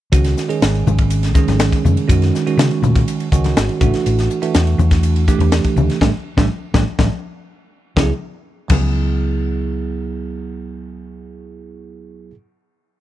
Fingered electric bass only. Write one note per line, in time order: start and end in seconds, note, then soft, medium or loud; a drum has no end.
0.12 0.33 C#2 medium
0.62 0.83 G#1 medium
0.87 1.35 G#1 medium
1.35 1.46 C#2 medium
1.49 1.69 G#1 medium
1.72 muted fingered electric bass stroke soft
1.84 1.95 F#2 medium
2.09 2.30 F#2 loud
2.57 2.68 C#3 medium
2.82 3.03 A#2 medium
3.32 3.53 C#2 medium
3.57 3.67 G#1 medium
3.70 muted fingered electric bass stroke soft
3.81 3.91 A1 medium
4.06 4.26 A1 medium
4.55 4.75 E2 medium
4.78 5.27 E2 medium
5.27 5.38 A1 medium
5.39 5.60 E2 medium
5.76 5.87 D2 medium
6.01 6.10 A1 medium
6.37 6.46 A1 medium
6.74 6.83 A1 medium
6.99 7.08 A1 loud
7.97 8.10 C#2 medium
8.70 12.32 C#2 medium